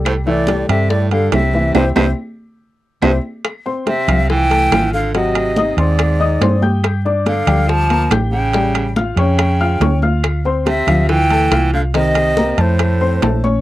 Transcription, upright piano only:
\new Staff \with { instrumentName = "Upright piano" } { \time 4/4 \key c \major \tempo 4 = 141 <g g' a'>8 <e e' e''>8 <g g' a'>8 <g g' a'>4 <g g' a'>4 <e e' e''>8 | <c' e' g'>8 <c' e' g'>8 r2 <c' e' g'>8 r8 | \key f \major r8 <c' c'' c'''>4 <f f' f''>4 <a a' a''>8 <f' f'' f'''>4 | <ges ges' ges''>4 <ees' ees'' ees'''>8 <c' c'' c'''>4 <ees' ees'' ees'''>8 <c' c'' c'''>8 <g' g'' g'''>8~ |
<g' g'' g'''>8 <d' d'' d'''>4 <g g' g''>4 <bes bes' bes''>8 <g' g'' g'''>4 | <g g' g''>4 <eis' eis'' eis'''>8 <cis' cis'' cis'''>4 <eis' eis'' eis'''>8 <cis' cis'' cis'''>8 <eis' eis'' eis'''>8~ | <eis' eis'' eis'''>8 <c' c'' c'''>4 <f f' f''>4 <a a' a''>8 <f' f'' f'''>4 | <ees ees' ees''>4 <bes bes' bes''>8 <a a' a''>4 <c' c'' c'''>8 <a a' a''>8 <des' des'' des'''>8 | }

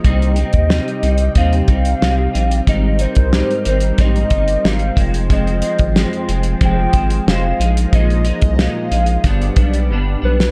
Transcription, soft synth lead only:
\new Staff \with { instrumentName = "Soft synth lead" } { \time 4/4 \key c \minor \tempo 4 = 91 ees''2 f''2 | ees''8 c''4 c''8 ees''4 f''8. r16 | ees''4. r8 g''4 f''4 | ees''4 f''2 r8 b'8 | }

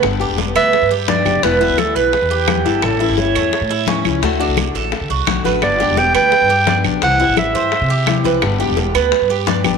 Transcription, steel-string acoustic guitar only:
\new Staff \with { instrumentName = "Steel-string acoustic guitar" } { \time 4/4 \key g \major \tempo 4 = 172 <d g b d' g'>8 <g b d' g'>8 <g b d' g'>4 r4 <g b d' g'>8 <g b d' g'>8 | <b, e g b e'>8 <e g b e'>8 <e g b e'>4 r4 <e g b e'>8 <e g b e'>8 | <e g cis' e'>8 <g cis' e'>8 <e g cis' e'>4 r4 <e g cis' e'>8 <g cis' e'>8 | <d a d' fis'>8 <a d' fis'>8 <d a d' fis'>4 r4 <d a d' fis'>8 <a d' fis'>8 |
<d g b d' g'>8 <g b d' g'>8 <g b d' g'>4 r4 <g b d' g'>8 <g b d' g'>8 | <c e g c' e'>8 <e g c' e'>8 <e g c' e'>4 r4 <e g c' e'>8 <e g c' e'>8 | <d g b d' g'>8 <g b d' g'>8 <g b d' g'>4 r4 <g b d' g'>8 <g b d' g'>8 | }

